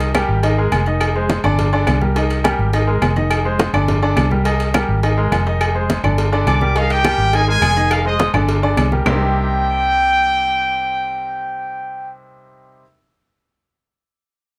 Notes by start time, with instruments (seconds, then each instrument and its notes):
Already playing: fingered electric bass C2
0.00 cowbell, high conga, low agogo
0.15 grand piano G3 G4 A#4, cowbell, high conga, low agogo, claves
0.29 fingered electric bass G#1, high conga
0.43 grand piano D#3 D#4 D#5, cowbell, high conga, low agogo
0.58 grand piano G#3 G#4 A#4, high conga
0.72 fingered electric bass F1, cowbell, high conga, low agogo, claves
0.86 grand piano D#3 D#4 D#5, low agogo
1.00 cowbell, high conga, low agogo, claves
1.15 grand piano G#3 G#4 C5, high conga
1.30 cowbell, high conga, low agogo
1.44 fingered electric bass G1, grand piano D3 D4 D5, low conga, low agogo, claves
1.59 cowbell, high conga, low conga
1.73 grand piano D3 D4 D5, high conga, low agogo
1.87 fingered electric bass C2, cowbell, high conga, low timbale, low agogo, claves
2.01 grand piano G3 G4 A#4, high conga
2.16 grand piano D#3 D#4 D#5, cowbell, low agogo
2.30 cowbell, high conga, low agogo
2.44 grand piano G3 G4 A#4, cowbell, high conga, low agogo, claves
2.59 fingered electric bass G#1, high conga
2.73 grand piano D#3 D#4 D#5, cowbell, high conga, low agogo
2.87 grand piano G#3 G#4 A#4, high conga
3.02 fingered electric bass F1, cowbell, high conga, low timbale, low agogo, claves
3.16 grand piano D#3 D#4 D#5, high conga, low agogo
3.30 cowbell, high conga, low agogo, claves
3.45 grand piano G#3 G#4 C5, high conga
3.59 cowbell, high conga, low agogo
3.73 fingered electric bass G1, grand piano D3 D4 D5, low conga, low agogo, claves
3.88 cowbell, high conga, low conga
4.02 grand piano D3 D4 D5, high conga, low agogo
4.17 fingered electric bass C2, cowbell, high conga, low timbale, low agogo, claves
4.31 grand piano G3 G4 A#4, high conga
4.45 grand piano D#3 D#4 D#5, cowbell, low agogo
4.60 cowbell, high conga, low agogo
4.74 grand piano G3 G4 A#4, cowbell, high conga, low agogo, claves
4.89 fingered electric bass G#1, high conga
5.03 grand piano D#3 D#4 D#5, cowbell, high conga, low agogo
5.17 grand piano G#3 G#4 A#4, high conga
5.32 fingered electric bass F1, cowbell, high conga, low timbale, low agogo, claves
5.46 grand piano D#3 D#4 D#5, low agogo
5.61 cowbell, high conga, low agogo, claves
5.75 grand piano G#3 G#4 C5, high conga
5.90 cowbell, high conga, low agogo
6.03 fingered electric bass G1, grand piano D3 D4 D5, low conga, low agogo, claves
6.18 cowbell, high conga
6.32 grand piano D3 D4 D5, high conga, low agogo
6.46 fingered electric bass C2, trumpet section D5 D6, cowbell, high conga, low agogo, claves
6.61 grand piano G3 G4 A#4, high conga
6.75 grand piano D#3 D#4 D#5, trumpet section F5, cowbell, high conga, low agogo
6.90 trumpet section G4 G5, cowbell, high conga, low agogo
7.04 grand piano G3 G4 A#4, cowbell, high conga, low agogo, claves
7.18 fingered electric bass G#1
7.33 grand piano D#3 D#4 D#5, trumpet section G#4 G#5, cowbell, high conga, low agogo
7.48 grand piano G#3 G#4 A#4, trumpet section G#4 G#5, high conga
7.61 fingered electric bass F1, cowbell, high conga, low agogo, claves
7.76 grand piano D#3 D#4 D#5, high conga, low agogo
7.91 trumpet section F5, cowbell, high conga, low agogo, claves
8.05 grand piano G#3 G#4 C5, trumpet section D#5 D#6, high conga
8.19 cowbell, high conga, low agogo
8.34 fingered electric bass G1, grand piano D3 D4 D5, low conga, low agogo, claves
8.48 cowbell, high conga
8.63 grand piano D3 D4 D5, high conga, low agogo
8.77 fingered electric bass C2, cowbell, high conga, low timbale, low agogo, claves
8.92 grand piano G3 G4 A#4, high conga
9.06 fingered electric bass C2, grand piano C3 G3 A#3 C4 D#4 G4, trumpet section G5, low bongo, low conga, low timbale, claves